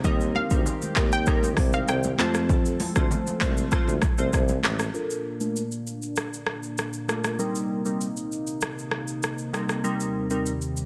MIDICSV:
0, 0, Header, 1, 6, 480
1, 0, Start_track
1, 0, Key_signature, -2, "major"
1, 0, Tempo, 612245
1, 34, Time_signature, 4, 2, 24, 8
1, 8511, End_track
2, 0, Start_track
2, 0, Title_t, "Synth pluck"
2, 0, Program_c, 0, 84
2, 40, Note_on_c, 0, 75, 90
2, 279, Note_on_c, 0, 77, 93
2, 284, Note_off_c, 0, 75, 0
2, 850, Note_off_c, 0, 77, 0
2, 884, Note_on_c, 0, 79, 107
2, 1363, Note_on_c, 0, 77, 91
2, 1376, Note_off_c, 0, 79, 0
2, 1478, Note_on_c, 0, 79, 99
2, 1480, Note_off_c, 0, 77, 0
2, 1718, Note_on_c, 0, 81, 103
2, 1724, Note_off_c, 0, 79, 0
2, 3605, Note_off_c, 0, 81, 0
2, 8511, End_track
3, 0, Start_track
3, 0, Title_t, "Synth keys"
3, 0, Program_c, 1, 88
3, 33, Note_on_c, 1, 55, 100
3, 34, Note_on_c, 1, 60, 89
3, 36, Note_on_c, 1, 63, 89
3, 37, Note_on_c, 1, 70, 110
3, 369, Note_off_c, 1, 55, 0
3, 369, Note_off_c, 1, 60, 0
3, 370, Note_off_c, 1, 63, 0
3, 371, Note_off_c, 1, 70, 0
3, 398, Note_on_c, 1, 55, 82
3, 399, Note_on_c, 1, 60, 78
3, 400, Note_on_c, 1, 63, 74
3, 403, Note_on_c, 1, 70, 87
3, 726, Note_off_c, 1, 55, 0
3, 727, Note_off_c, 1, 60, 0
3, 727, Note_off_c, 1, 63, 0
3, 729, Note_off_c, 1, 70, 0
3, 753, Note_on_c, 1, 55, 81
3, 755, Note_on_c, 1, 60, 75
3, 756, Note_on_c, 1, 63, 75
3, 758, Note_on_c, 1, 70, 89
3, 975, Note_off_c, 1, 55, 0
3, 976, Note_off_c, 1, 60, 0
3, 977, Note_off_c, 1, 63, 0
3, 978, Note_off_c, 1, 70, 0
3, 993, Note_on_c, 1, 55, 93
3, 995, Note_on_c, 1, 60, 86
3, 997, Note_on_c, 1, 63, 86
3, 998, Note_on_c, 1, 70, 104
3, 1169, Note_off_c, 1, 55, 0
3, 1170, Note_off_c, 1, 60, 0
3, 1171, Note_off_c, 1, 63, 0
3, 1172, Note_off_c, 1, 70, 0
3, 1357, Note_on_c, 1, 55, 77
3, 1358, Note_on_c, 1, 60, 71
3, 1360, Note_on_c, 1, 63, 73
3, 1361, Note_on_c, 1, 70, 82
3, 1528, Note_off_c, 1, 55, 0
3, 1529, Note_off_c, 1, 60, 0
3, 1530, Note_off_c, 1, 63, 0
3, 1530, Note_off_c, 1, 70, 0
3, 1713, Note_on_c, 1, 57, 94
3, 1714, Note_on_c, 1, 60, 86
3, 1715, Note_on_c, 1, 65, 87
3, 1717, Note_on_c, 1, 72, 104
3, 1935, Note_off_c, 1, 57, 0
3, 1936, Note_off_c, 1, 60, 0
3, 1937, Note_off_c, 1, 65, 0
3, 1937, Note_off_c, 1, 72, 0
3, 2318, Note_on_c, 1, 57, 81
3, 2319, Note_on_c, 1, 60, 71
3, 2321, Note_on_c, 1, 65, 74
3, 2322, Note_on_c, 1, 72, 87
3, 2646, Note_off_c, 1, 57, 0
3, 2647, Note_off_c, 1, 60, 0
3, 2648, Note_off_c, 1, 65, 0
3, 2648, Note_off_c, 1, 72, 0
3, 2672, Note_on_c, 1, 57, 79
3, 2674, Note_on_c, 1, 60, 77
3, 2675, Note_on_c, 1, 65, 74
3, 2677, Note_on_c, 1, 72, 86
3, 2895, Note_off_c, 1, 57, 0
3, 2896, Note_off_c, 1, 60, 0
3, 2897, Note_off_c, 1, 65, 0
3, 2897, Note_off_c, 1, 72, 0
3, 2912, Note_on_c, 1, 57, 90
3, 2914, Note_on_c, 1, 60, 88
3, 2915, Note_on_c, 1, 65, 91
3, 2917, Note_on_c, 1, 72, 100
3, 3089, Note_off_c, 1, 57, 0
3, 3090, Note_off_c, 1, 60, 0
3, 3090, Note_off_c, 1, 65, 0
3, 3091, Note_off_c, 1, 72, 0
3, 3277, Note_on_c, 1, 57, 76
3, 3279, Note_on_c, 1, 60, 71
3, 3280, Note_on_c, 1, 65, 69
3, 3282, Note_on_c, 1, 72, 86
3, 3448, Note_off_c, 1, 57, 0
3, 3449, Note_off_c, 1, 60, 0
3, 3450, Note_off_c, 1, 65, 0
3, 3450, Note_off_c, 1, 72, 0
3, 3872, Note_on_c, 1, 69, 90
3, 3874, Note_on_c, 1, 62, 77
3, 3876, Note_on_c, 1, 65, 81
3, 3877, Note_on_c, 1, 70, 93
3, 4208, Note_off_c, 1, 69, 0
3, 4209, Note_off_c, 1, 62, 0
3, 4210, Note_off_c, 1, 65, 0
3, 4211, Note_off_c, 1, 70, 0
3, 4236, Note_on_c, 1, 57, 71
3, 4238, Note_on_c, 1, 62, 66
3, 4240, Note_on_c, 1, 65, 68
3, 4241, Note_on_c, 1, 70, 80
3, 4408, Note_off_c, 1, 57, 0
3, 4409, Note_off_c, 1, 62, 0
3, 4410, Note_off_c, 1, 65, 0
3, 4410, Note_off_c, 1, 70, 0
3, 5552, Note_on_c, 1, 57, 72
3, 5553, Note_on_c, 1, 62, 66
3, 5554, Note_on_c, 1, 65, 64
3, 5556, Note_on_c, 1, 70, 74
3, 5775, Note_off_c, 1, 57, 0
3, 5775, Note_off_c, 1, 62, 0
3, 5776, Note_off_c, 1, 65, 0
3, 5777, Note_off_c, 1, 70, 0
3, 5792, Note_on_c, 1, 55, 91
3, 5794, Note_on_c, 1, 60, 78
3, 5795, Note_on_c, 1, 63, 83
3, 5797, Note_on_c, 1, 70, 97
3, 6128, Note_off_c, 1, 55, 0
3, 6129, Note_off_c, 1, 60, 0
3, 6130, Note_off_c, 1, 63, 0
3, 6130, Note_off_c, 1, 70, 0
3, 6157, Note_on_c, 1, 55, 72
3, 6158, Note_on_c, 1, 60, 66
3, 6160, Note_on_c, 1, 63, 65
3, 6161, Note_on_c, 1, 70, 79
3, 6328, Note_off_c, 1, 55, 0
3, 6329, Note_off_c, 1, 60, 0
3, 6329, Note_off_c, 1, 63, 0
3, 6330, Note_off_c, 1, 70, 0
3, 7472, Note_on_c, 1, 55, 68
3, 7474, Note_on_c, 1, 60, 67
3, 7476, Note_on_c, 1, 63, 67
3, 7477, Note_on_c, 1, 70, 80
3, 7695, Note_off_c, 1, 55, 0
3, 7696, Note_off_c, 1, 60, 0
3, 7697, Note_off_c, 1, 63, 0
3, 7697, Note_off_c, 1, 70, 0
3, 7712, Note_on_c, 1, 55, 92
3, 7714, Note_on_c, 1, 60, 84
3, 7716, Note_on_c, 1, 63, 84
3, 7717, Note_on_c, 1, 70, 98
3, 8048, Note_off_c, 1, 55, 0
3, 8049, Note_off_c, 1, 60, 0
3, 8050, Note_off_c, 1, 63, 0
3, 8051, Note_off_c, 1, 70, 0
3, 8078, Note_on_c, 1, 55, 76
3, 8080, Note_on_c, 1, 60, 68
3, 8081, Note_on_c, 1, 63, 69
3, 8083, Note_on_c, 1, 70, 82
3, 8249, Note_off_c, 1, 55, 0
3, 8250, Note_off_c, 1, 60, 0
3, 8250, Note_off_c, 1, 63, 0
3, 8251, Note_off_c, 1, 70, 0
3, 8511, End_track
4, 0, Start_track
4, 0, Title_t, "Analog synth pad"
4, 0, Program_c, 2, 89
4, 33, Note_on_c, 2, 51, 78
4, 33, Note_on_c, 2, 60, 73
4, 33, Note_on_c, 2, 67, 92
4, 1697, Note_off_c, 2, 51, 0
4, 1697, Note_off_c, 2, 67, 0
4, 1714, Note_on_c, 2, 53, 78
4, 1715, Note_on_c, 2, 69, 88
4, 3842, Note_off_c, 2, 60, 0
4, 3853, Note_off_c, 2, 53, 0
4, 3853, Note_off_c, 2, 69, 0
4, 3875, Note_on_c, 2, 46, 75
4, 3875, Note_on_c, 2, 58, 71
4, 3876, Note_on_c, 2, 62, 85
4, 5776, Note_off_c, 2, 46, 0
4, 5776, Note_off_c, 2, 58, 0
4, 5776, Note_off_c, 2, 62, 0
4, 5795, Note_on_c, 2, 48, 77
4, 5795, Note_on_c, 2, 58, 73
4, 5795, Note_on_c, 2, 63, 87
4, 7695, Note_off_c, 2, 58, 0
4, 7696, Note_off_c, 2, 63, 0
4, 7716, Note_on_c, 2, 39, 81
4, 7716, Note_on_c, 2, 55, 85
4, 8511, Note_off_c, 2, 39, 0
4, 8511, Note_off_c, 2, 48, 0
4, 8511, Note_off_c, 2, 55, 0
4, 8511, End_track
5, 0, Start_track
5, 0, Title_t, "Tuba"
5, 0, Program_c, 3, 58
5, 34, Note_on_c, 3, 39, 108
5, 322, Note_off_c, 3, 39, 0
5, 399, Note_on_c, 3, 38, 94
5, 490, Note_off_c, 3, 38, 0
5, 756, Note_on_c, 3, 39, 100
5, 1235, Note_on_c, 3, 36, 95
5, 1247, Note_off_c, 3, 39, 0
5, 1424, Note_off_c, 3, 36, 0
5, 1475, Note_on_c, 3, 36, 105
5, 1664, Note_off_c, 3, 36, 0
5, 1714, Note_on_c, 3, 41, 98
5, 2192, Note_off_c, 3, 41, 0
5, 2321, Note_on_c, 3, 38, 90
5, 2411, Note_off_c, 3, 38, 0
5, 2677, Note_on_c, 3, 36, 93
5, 2866, Note_off_c, 3, 36, 0
5, 3039, Note_on_c, 3, 38, 89
5, 3130, Note_off_c, 3, 38, 0
5, 3279, Note_on_c, 3, 36, 92
5, 3370, Note_off_c, 3, 36, 0
5, 3397, Note_on_c, 3, 36, 102
5, 3586, Note_off_c, 3, 36, 0
5, 3634, Note_on_c, 3, 33, 93
5, 3824, Note_off_c, 3, 33, 0
5, 8511, End_track
6, 0, Start_track
6, 0, Title_t, "Drums"
6, 34, Note_on_c, 9, 36, 115
6, 34, Note_on_c, 9, 82, 67
6, 36, Note_on_c, 9, 64, 79
6, 112, Note_off_c, 9, 36, 0
6, 112, Note_off_c, 9, 82, 0
6, 114, Note_off_c, 9, 64, 0
6, 160, Note_on_c, 9, 82, 60
6, 239, Note_off_c, 9, 82, 0
6, 274, Note_on_c, 9, 63, 93
6, 352, Note_off_c, 9, 63, 0
6, 395, Note_on_c, 9, 82, 57
6, 399, Note_on_c, 9, 36, 79
6, 474, Note_off_c, 9, 82, 0
6, 478, Note_off_c, 9, 36, 0
6, 515, Note_on_c, 9, 64, 74
6, 520, Note_on_c, 9, 82, 78
6, 594, Note_off_c, 9, 64, 0
6, 599, Note_off_c, 9, 82, 0
6, 642, Note_on_c, 9, 82, 53
6, 644, Note_on_c, 9, 63, 57
6, 720, Note_off_c, 9, 82, 0
6, 722, Note_off_c, 9, 63, 0
6, 751, Note_on_c, 9, 39, 99
6, 753, Note_on_c, 9, 63, 91
6, 756, Note_on_c, 9, 36, 103
6, 761, Note_on_c, 9, 82, 56
6, 829, Note_off_c, 9, 39, 0
6, 832, Note_off_c, 9, 63, 0
6, 835, Note_off_c, 9, 36, 0
6, 840, Note_off_c, 9, 82, 0
6, 880, Note_on_c, 9, 82, 58
6, 959, Note_off_c, 9, 82, 0
6, 991, Note_on_c, 9, 82, 78
6, 995, Note_on_c, 9, 36, 108
6, 1001, Note_on_c, 9, 37, 104
6, 1069, Note_off_c, 9, 82, 0
6, 1073, Note_off_c, 9, 36, 0
6, 1079, Note_off_c, 9, 37, 0
6, 1119, Note_on_c, 9, 63, 78
6, 1127, Note_on_c, 9, 82, 60
6, 1198, Note_off_c, 9, 63, 0
6, 1205, Note_off_c, 9, 82, 0
6, 1228, Note_on_c, 9, 37, 94
6, 1232, Note_on_c, 9, 46, 54
6, 1235, Note_on_c, 9, 36, 98
6, 1236, Note_on_c, 9, 63, 74
6, 1307, Note_off_c, 9, 37, 0
6, 1311, Note_off_c, 9, 46, 0
6, 1314, Note_off_c, 9, 36, 0
6, 1314, Note_off_c, 9, 63, 0
6, 1356, Note_on_c, 9, 82, 47
6, 1434, Note_off_c, 9, 82, 0
6, 1475, Note_on_c, 9, 82, 76
6, 1482, Note_on_c, 9, 37, 88
6, 1554, Note_off_c, 9, 82, 0
6, 1561, Note_off_c, 9, 37, 0
6, 1594, Note_on_c, 9, 82, 59
6, 1604, Note_on_c, 9, 63, 76
6, 1672, Note_off_c, 9, 82, 0
6, 1683, Note_off_c, 9, 63, 0
6, 1710, Note_on_c, 9, 63, 81
6, 1719, Note_on_c, 9, 82, 59
6, 1720, Note_on_c, 9, 37, 94
6, 1720, Note_on_c, 9, 39, 96
6, 1788, Note_off_c, 9, 63, 0
6, 1798, Note_off_c, 9, 82, 0
6, 1799, Note_off_c, 9, 37, 0
6, 1799, Note_off_c, 9, 39, 0
6, 1837, Note_on_c, 9, 82, 58
6, 1839, Note_on_c, 9, 37, 90
6, 1916, Note_off_c, 9, 82, 0
6, 1918, Note_off_c, 9, 37, 0
6, 1955, Note_on_c, 9, 36, 113
6, 1956, Note_on_c, 9, 82, 67
6, 1957, Note_on_c, 9, 64, 86
6, 2033, Note_off_c, 9, 36, 0
6, 2035, Note_off_c, 9, 82, 0
6, 2036, Note_off_c, 9, 64, 0
6, 2082, Note_on_c, 9, 82, 61
6, 2161, Note_off_c, 9, 82, 0
6, 2193, Note_on_c, 9, 46, 56
6, 2193, Note_on_c, 9, 82, 54
6, 2196, Note_on_c, 9, 63, 91
6, 2272, Note_off_c, 9, 46, 0
6, 2272, Note_off_c, 9, 82, 0
6, 2274, Note_off_c, 9, 63, 0
6, 2318, Note_on_c, 9, 82, 57
6, 2319, Note_on_c, 9, 37, 94
6, 2320, Note_on_c, 9, 36, 81
6, 2396, Note_off_c, 9, 82, 0
6, 2398, Note_off_c, 9, 37, 0
6, 2399, Note_off_c, 9, 36, 0
6, 2436, Note_on_c, 9, 64, 77
6, 2442, Note_on_c, 9, 82, 75
6, 2515, Note_off_c, 9, 64, 0
6, 2520, Note_off_c, 9, 82, 0
6, 2564, Note_on_c, 9, 82, 55
6, 2566, Note_on_c, 9, 63, 58
6, 2642, Note_off_c, 9, 82, 0
6, 2645, Note_off_c, 9, 63, 0
6, 2672, Note_on_c, 9, 39, 91
6, 2675, Note_on_c, 9, 63, 92
6, 2677, Note_on_c, 9, 36, 104
6, 2682, Note_on_c, 9, 82, 58
6, 2750, Note_off_c, 9, 39, 0
6, 2754, Note_off_c, 9, 63, 0
6, 2755, Note_off_c, 9, 36, 0
6, 2760, Note_off_c, 9, 82, 0
6, 2801, Note_on_c, 9, 82, 59
6, 2879, Note_off_c, 9, 82, 0
6, 2912, Note_on_c, 9, 82, 76
6, 2915, Note_on_c, 9, 36, 100
6, 2922, Note_on_c, 9, 37, 104
6, 2990, Note_off_c, 9, 82, 0
6, 2994, Note_off_c, 9, 36, 0
6, 3000, Note_off_c, 9, 37, 0
6, 3039, Note_on_c, 9, 63, 81
6, 3048, Note_on_c, 9, 82, 58
6, 3117, Note_off_c, 9, 63, 0
6, 3126, Note_off_c, 9, 82, 0
6, 3149, Note_on_c, 9, 37, 93
6, 3153, Note_on_c, 9, 82, 56
6, 3154, Note_on_c, 9, 63, 73
6, 3155, Note_on_c, 9, 36, 93
6, 3227, Note_off_c, 9, 37, 0
6, 3231, Note_off_c, 9, 82, 0
6, 3233, Note_off_c, 9, 63, 0
6, 3234, Note_off_c, 9, 36, 0
6, 3277, Note_on_c, 9, 82, 49
6, 3355, Note_off_c, 9, 82, 0
6, 3396, Note_on_c, 9, 82, 77
6, 3397, Note_on_c, 9, 36, 91
6, 3403, Note_on_c, 9, 37, 88
6, 3474, Note_off_c, 9, 82, 0
6, 3475, Note_off_c, 9, 36, 0
6, 3481, Note_off_c, 9, 37, 0
6, 3514, Note_on_c, 9, 82, 58
6, 3523, Note_on_c, 9, 63, 74
6, 3593, Note_off_c, 9, 82, 0
6, 3601, Note_off_c, 9, 63, 0
6, 3628, Note_on_c, 9, 63, 80
6, 3639, Note_on_c, 9, 82, 60
6, 3640, Note_on_c, 9, 37, 95
6, 3640, Note_on_c, 9, 39, 92
6, 3707, Note_off_c, 9, 63, 0
6, 3718, Note_off_c, 9, 37, 0
6, 3718, Note_off_c, 9, 39, 0
6, 3718, Note_off_c, 9, 82, 0
6, 3757, Note_on_c, 9, 82, 60
6, 3759, Note_on_c, 9, 37, 94
6, 3836, Note_off_c, 9, 82, 0
6, 3838, Note_off_c, 9, 37, 0
6, 3876, Note_on_c, 9, 82, 58
6, 3954, Note_off_c, 9, 82, 0
6, 4002, Note_on_c, 9, 82, 53
6, 4080, Note_off_c, 9, 82, 0
6, 4237, Note_on_c, 9, 82, 52
6, 4316, Note_off_c, 9, 82, 0
6, 4362, Note_on_c, 9, 82, 70
6, 4440, Note_off_c, 9, 82, 0
6, 4482, Note_on_c, 9, 82, 48
6, 4560, Note_off_c, 9, 82, 0
6, 4601, Note_on_c, 9, 82, 52
6, 4680, Note_off_c, 9, 82, 0
6, 4720, Note_on_c, 9, 82, 52
6, 4798, Note_off_c, 9, 82, 0
6, 4831, Note_on_c, 9, 82, 69
6, 4841, Note_on_c, 9, 37, 96
6, 4910, Note_off_c, 9, 82, 0
6, 4920, Note_off_c, 9, 37, 0
6, 4967, Note_on_c, 9, 82, 55
6, 5045, Note_off_c, 9, 82, 0
6, 5069, Note_on_c, 9, 37, 85
6, 5147, Note_off_c, 9, 37, 0
6, 5197, Note_on_c, 9, 82, 43
6, 5275, Note_off_c, 9, 82, 0
6, 5315, Note_on_c, 9, 82, 68
6, 5322, Note_on_c, 9, 37, 80
6, 5393, Note_off_c, 9, 82, 0
6, 5401, Note_off_c, 9, 37, 0
6, 5434, Note_on_c, 9, 82, 51
6, 5512, Note_off_c, 9, 82, 0
6, 5559, Note_on_c, 9, 82, 54
6, 5560, Note_on_c, 9, 37, 85
6, 5638, Note_off_c, 9, 37, 0
6, 5638, Note_off_c, 9, 82, 0
6, 5677, Note_on_c, 9, 82, 56
6, 5679, Note_on_c, 9, 37, 89
6, 5756, Note_off_c, 9, 82, 0
6, 5758, Note_off_c, 9, 37, 0
6, 5796, Note_on_c, 9, 82, 59
6, 5874, Note_off_c, 9, 82, 0
6, 5921, Note_on_c, 9, 82, 53
6, 6000, Note_off_c, 9, 82, 0
6, 6157, Note_on_c, 9, 82, 53
6, 6235, Note_off_c, 9, 82, 0
6, 6281, Note_on_c, 9, 82, 73
6, 6359, Note_off_c, 9, 82, 0
6, 6403, Note_on_c, 9, 82, 50
6, 6481, Note_off_c, 9, 82, 0
6, 6522, Note_on_c, 9, 82, 52
6, 6600, Note_off_c, 9, 82, 0
6, 6641, Note_on_c, 9, 82, 53
6, 6719, Note_off_c, 9, 82, 0
6, 6752, Note_on_c, 9, 82, 72
6, 6762, Note_on_c, 9, 37, 97
6, 6830, Note_off_c, 9, 82, 0
6, 6840, Note_off_c, 9, 37, 0
6, 6888, Note_on_c, 9, 82, 51
6, 6966, Note_off_c, 9, 82, 0
6, 6989, Note_on_c, 9, 37, 84
6, 7067, Note_off_c, 9, 37, 0
6, 7116, Note_on_c, 9, 82, 42
6, 7195, Note_off_c, 9, 82, 0
6, 7236, Note_on_c, 9, 82, 74
6, 7243, Note_on_c, 9, 37, 85
6, 7314, Note_off_c, 9, 82, 0
6, 7321, Note_off_c, 9, 37, 0
6, 7354, Note_on_c, 9, 82, 53
6, 7433, Note_off_c, 9, 82, 0
6, 7480, Note_on_c, 9, 82, 54
6, 7481, Note_on_c, 9, 37, 88
6, 7558, Note_off_c, 9, 82, 0
6, 7559, Note_off_c, 9, 37, 0
6, 7597, Note_on_c, 9, 82, 57
6, 7599, Note_on_c, 9, 37, 88
6, 7676, Note_off_c, 9, 82, 0
6, 7678, Note_off_c, 9, 37, 0
6, 7717, Note_on_c, 9, 82, 60
6, 7795, Note_off_c, 9, 82, 0
6, 7842, Note_on_c, 9, 82, 54
6, 7921, Note_off_c, 9, 82, 0
6, 8078, Note_on_c, 9, 82, 52
6, 8156, Note_off_c, 9, 82, 0
6, 8202, Note_on_c, 9, 82, 73
6, 8280, Note_off_c, 9, 82, 0
6, 8323, Note_on_c, 9, 82, 50
6, 8401, Note_off_c, 9, 82, 0
6, 8442, Note_on_c, 9, 82, 53
6, 8511, Note_off_c, 9, 82, 0
6, 8511, End_track
0, 0, End_of_file